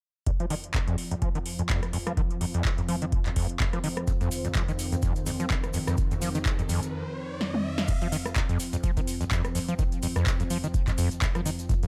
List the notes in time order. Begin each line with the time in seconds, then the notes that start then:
0.26 F2 F3 C4 F4, kick, closed hi-hat
0.40 F3, closed hi-hat
0.50 D#3, open hi-hat
0.60 C5, closed hi-hat
0.74 F2, kick, clap, closed hi-hat
0.87 F2, closed hi-hat
0.98 open hi-hat
1.11 F2, closed hi-hat
1.22 F3, kick, closed hi-hat
1.30 F5
1.35 D#3, closed hi-hat
1.46 open hi-hat
1.59 F2, closed hi-hat
1.69 F2, kick, clap, closed hi-hat
1.83 cross-stick, closed hi-hat
1.93 F2, open hi-hat
2.07 F3, cross-stick, closed hi-hat
2.17 D#3, kick, closed hi-hat
2.31 closed hi-hat
2.41 F2, open hi-hat
2.54 F2, closed hi-hat
2.65 kick, clap, closed hi-hat
2.78 F2, closed hi-hat
2.88 F3, open hi-hat
3.02 D#3, closed hi-hat
3.12 kick, closed hi-hat
3.26 F2, clap, closed hi-hat
3.36 F2, kick, open hi-hat
3.49 closed hi-hat
3.60 F2, kick, clap, closed hi-hat
3.73 F3, cross-stick, closed hi-hat
3.84 D#3, open hi-hat
3.97 cross-stick, closed hi-hat
4.07 F2 D#3, kick, closed hi-hat, riser, shaker
4.21 F2, closed hi-hat, shaker
4.31 open hi-hat, shaker
4.45 F2, closed hi-hat, shaker
4.54 F3, kick, clap, closed hi-hat, shaker
4.68 D#3, closed hi-hat, shaker
4.79 open hi-hat, shaker
4.92 F2, closed hi-hat, shaker
5.02 F2, kick, closed hi-hat, shaker
5.16 closed hi-hat, shaker
5.26 F2, open hi-hat, shaker
5.40 F3, closed hi-hat, shaker
5.50 D#3, kick, clap, closed hi-hat, shaker
5.63 cross-stick, closed hi-hat, shaker
5.73 F2, open hi-hat, shaker
5.87 F2, cross-stick, closed hi-hat, shaker
5.97 kick, closed hi-hat, shaker
6.11 F2, closed hi-hat, shaker
6.22 F3, open hi-hat, shaker
6.35 D#3, closed hi-hat, shaker
6.46 kick, clap, closed hi-hat, shaker
6.59 F2, closed hi-hat, shaker
6.69 F2, open hi-hat, shaker
6.82 closed hi-hat, shaker
7.41 snare
7.54 high tom
7.78 snare
7.88 F2 F3 C4, kick, closed hi-hat, crash, shaker
8.01 F3, closed hi-hat, shaker
8.12 D#3, open hi-hat, shaker
8.26 cross-stick, closed hi-hat, shaker
8.36 F2, kick, clap, closed hi-hat, shaker
8.49 F2, closed hi-hat, shaker
8.60 open hi-hat, shaker
8.73 F2, closed hi-hat, shaker
8.84 F3, kick, closed hi-hat, shaker
8.97 D#3, kick, closed hi-hat, shaker
9.07 open hi-hat, shaker
9.21 F2, closed hi-hat, shaker
9.31 F2, kick, clap, closed hi-hat, shaker
9.45 cross-stick, closed hi-hat, shaker
9.55 F2, open hi-hat, shaker
9.68 F3, closed hi-hat, shaker
9.79 D#3, kick, closed hi-hat, shaker
9.92 closed hi-hat, shaker
10.02 F2, open hi-hat, shaker
10.16 F2, cross-stick, closed hi-hat, shaker
10.26 kick, clap, closed hi-hat, shaker
10.40 F2, closed hi-hat, shaker
10.50 F3, open hi-hat, shaker
10.64 D#3, closed hi-hat, shaker
10.74 kick, closed hi-hat, shaker
10.87 F2, kick, clap, closed hi-hat, shaker
10.98 F2, open hi-hat, shaker
11.11 closed hi-hat, shaker
11.22 F2, kick, clap, closed hi-hat, shaker
11.35 F3, cross-stick, closed hi-hat, shaker
11.46 D#3, open hi-hat, shaker
11.59 closed hi-hat, shaker
11.69 F2 F4, kick, closed hi-hat, shaker
11.83 F2, closed hi-hat, shaker